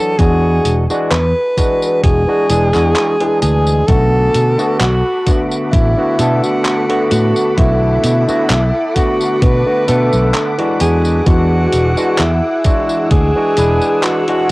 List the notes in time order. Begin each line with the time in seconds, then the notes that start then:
Already playing: E3 F#3 D4 F#4 A4
0.18 E2 E3 G#3 D4 F#4 G#4, kick, closed hi-hat, tambourine
0.65 E1, closed hi-hat, tambourine
0.89 E3 G#3 D4 F#4, muted fretless electric bass stroke, tambourine
1.11 E2 B4, clap, closed hi-hat, tambourine
1.57 E3 G#3 D4 F#4, kick, closed hi-hat, tambourine
1.82 tambourine
2.03 E1 G#4, kick, closed hi-hat, tambourine
2.27 E3 G#3 D4 F#4
2.49 E1 E3 G#3 D4 G#4, closed hi-hat, tambourine
2.74 E2 E3 G#3 D4 F#4, clap, tambourine
2.96 clap, closed hi-hat, tambourine
3.20 E3 G#3 D4 G#4, closed hi-hat
3.41 D2 G#4, closed hi-hat, tambourine
3.67 tambourine
3.87 B1 D3 A3 B3 F#4 A4 F#5 B5 D6, kick, closed hi-hat, tambourine
4.34 B2, closed hi-hat, tambourine
4.58 D3 A3 B3 F#4, tambourine
4.79 B1 F#4, clap, closed hi-hat, tambourine
5.26 D3 A3 B3 F#4, kick, closed hi-hat, tambourine
5.51 tambourine
5.71 A1 E4, kick, closed hi-hat, tambourine
5.97 D3 A3 B3 F#4
6.19 B2 D3 A3 B3 A4, closed hi-hat, tambourine
6.43 F#4, tambourine
6.65 clap, closed hi-hat, tambourine
6.89 D3 A3 B3 F#4, closed hi-hat
7.10 A2 F#4, closed hi-hat, tambourine
7.36 tambourine
7.57 B1 D3 A3 B3 E4 F#4, kick, closed hi-hat, tambourine
8.04 B2, closed hi-hat, tambourine
8.28 D3 A3 B3 F#4, muted fretless electric bass stroke, tambourine
8.50 B1, clap, closed hi-hat, tambourine
8.95 D3 A3 B3 F#4, kick, closed hi-hat, tambourine
9.21 tambourine
9.42 B2 B4, kick, closed hi-hat, tambourine
9.65 D3 A3 B3 F#4
9.87 B2 D3 A3 B3 A4, closed hi-hat, tambourine
10.13 B1, tambourine
10.34 clap, closed hi-hat, tambourine
10.58 E3 G#3 D4 F#4, closed hi-hat
10.80 E2 G#4 E6, closed hi-hat, tambourine
11.05 tambourine
11.26 E2 E3 G#3 D4 F#4, kick, closed hi-hat, tambourine
11.72 E1, closed hi-hat, tambourine
11.97 E3 G#3 D4 F#4, tambourine
12.18 E2 E4, clap, closed hi-hat, tambourine
12.64 E3 G#3 D4 F#4, kick, closed hi-hat, tambourine
12.89 tambourine
13.11 D2 G#4, kick, closed hi-hat, tambourine
13.35 E3 G#3 D4 F#4
13.57 E1 E3 G#3 D4 B4, closed hi-hat, tambourine
13.82 tambourine
14.03 F#4, clap, closed hi-hat, tambourine
14.28 E3 G#3 D4 F#4, closed hi-hat